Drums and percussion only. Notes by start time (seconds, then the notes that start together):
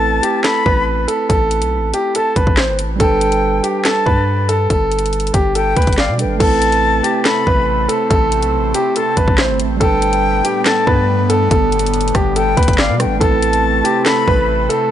0.23 closed hi-hat
0.44 snare, clap, closed hi-hat
0.66 kick
1.08 closed hi-hat
1.30 kick, closed hi-hat
1.51 closed hi-hat
1.62 closed hi-hat
1.94 closed hi-hat
2.15 closed hi-hat
2.36 kick, closed hi-hat
2.47 kick
2.57 snare, clap
2.79 closed hi-hat
3.00 kick, closed hi-hat
3.21 closed hi-hat
3.32 closed hi-hat
3.64 closed hi-hat
3.85 snare, clap, closed hi-hat
4.06 kick
4.49 closed hi-hat
4.70 kick, closed hi-hat
4.92 closed hi-hat
4.99 closed hi-hat
5.06 closed hi-hat
5.13 closed hi-hat
5.20 closed hi-hat
5.27 closed hi-hat
5.34 kick, closed hi-hat
5.55 closed hi-hat
5.77 kick, closed hi-hat
5.82 closed hi-hat
5.87 kick, closed hi-hat
5.93 closed hi-hat
5.98 snare, clap
6.19 closed hi-hat
6.40 kick, closed hi-hat, crash
6.62 closed hi-hat
6.72 closed hi-hat
7.04 closed hi-hat
7.25 snare, clap, closed hi-hat
7.47 kick
7.89 closed hi-hat
8.11 kick, closed hi-hat
8.32 closed hi-hat
8.43 closed hi-hat
8.74 closed hi-hat
8.96 closed hi-hat
9.17 kick, closed hi-hat
9.28 kick
9.38 snare, clap
9.60 closed hi-hat
9.81 kick, closed hi-hat
10.02 closed hi-hat
10.13 closed hi-hat
10.45 closed hi-hat
10.66 snare, clap, closed hi-hat
10.87 kick
11.30 closed hi-hat
11.51 kick, closed hi-hat
11.72 closed hi-hat
11.79 closed hi-hat
11.86 closed hi-hat
11.94 closed hi-hat
12.01 closed hi-hat
12.08 closed hi-hat
12.15 kick, cross-stick, closed hi-hat
12.36 closed hi-hat
12.57 kick, closed hi-hat
12.63 closed hi-hat
12.68 kick, closed hi-hat
12.73 closed hi-hat
12.78 snare, clap
13.00 cross-stick, closed hi-hat
13.21 kick, closed hi-hat
13.42 closed hi-hat
13.53 closed hi-hat
13.85 closed hi-hat
14.06 snare, clap, closed hi-hat
14.28 kick
14.70 closed hi-hat